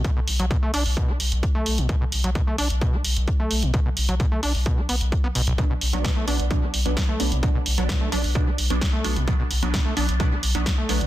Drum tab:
HH |x-oxx-oo--oxx-ox|x-oxx-oxx-oxx-ox|x-oxx-oox-oxx-ox|x-oxx-oxx-oxx-ox|
SD |----------------|----------------|----------------|----o-------o---|
BD |o---o---o---o---|o---o---o---o---|o---o---o---o---|o---o---o---o---|

HH |x-oxx-oox-oxx-ox|x-oxx-oxx-oxx-ox|
SD |----o-------o---|----o-------o---|
BD |o---o---o---o---|o---o---o---o---|